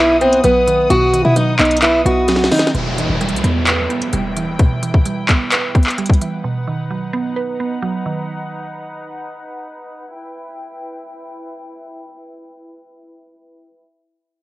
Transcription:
Already playing: B1 B2 D#3 F#3 B3 E4 B4 F#5 D#6
0.21 B3 C4, closed hi-hat
0.33 closed hi-hat
0.44 B1 F#3 B3, closed hi-hat
0.67 D#3, closed hi-hat
0.90 B1 B2 F#4, closed hi-hat
1.13 D#3, closed hi-hat
1.25 B2 E4
1.36 F#3 D#4, closed hi-hat
1.59 B1 B3 D#4, clap, closed hi-hat
1.65 closed hi-hat
1.71 closed hi-hat
1.77 closed hi-hat
1.82 E4 B4, clap, closed hi-hat
2.06 B1 B3 F#4, closed hi-hat
2.28 F#3, snare, closed hi-hat
2.36 snare
2.44 snare
2.52 D#3 D#4, snare, closed hi-hat, open hi-hat
2.59 snare
2.67 snare, closed hi-hat
2.75 E1 B2 E4 B4 G5, closed hi-hat, downlifter
2.98 E3, closed hi-hat
3.09 E1
3.21 G3, closed hi-hat
3.29 B1, closed hi-hat
3.36 closed hi-hat
3.44 E2 B3, closed hi-hat
3.67 B4, clap, closed hi-hat
3.90 B3, closed hi-hat
4.02 closed hi-hat
4.13 E1 G3, closed hi-hat
4.37 E3, closed hi-hat
4.48 D#1
4.59 B2, kick, closed hi-hat
4.83 E3, closed hi-hat
4.94 kick
5.05 G3, closed hi-hat
5.29 B3, kick, clap, closed hi-hat
5.52 B4, clap, closed hi-hat
5.75 B3, kick, closed hi-hat
5.83 clap, closed hi-hat
5.90 closed hi-hat
5.98 G3, closed hi-hat
6.06 kick, closed hi-hat
6.13 closed hi-hat
6.21 E3, closed hi-hat
6.44 B2 D#4 F#5
6.67 D#3
6.90 F#3
7.13 B3
7.36 B4
7.60 B3
7.82 F#3
8.06 D#3
10.13 E4 B4 G5

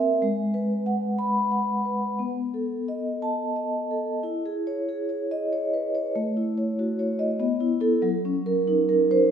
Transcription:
Already playing: C4 A#4 E5
0.22 G#3
0.54 B4
0.86 F#5
1.19 B5
1.51 F#5
1.85 B4
2.19 B3
2.54 A4
2.88 D#5
3.22 A5
3.56 D#5
3.91 A4
4.23 E4
4.46 G#4
4.67 C#5
4.89 G#4
5.09 C#5
5.31 D#5
5.53 C#5
5.74 B4
5.95 C#5
6.16 A3
6.37 E4
6.58 C#5
6.79 F#4
6.99 C#5
7.19 D#5
7.40 B3
7.60 E4
7.80 E4 A4
8.02 F#3
8.25 C#4
8.46 A#4
8.68 D#4
8.89 A#4
9.11 C5

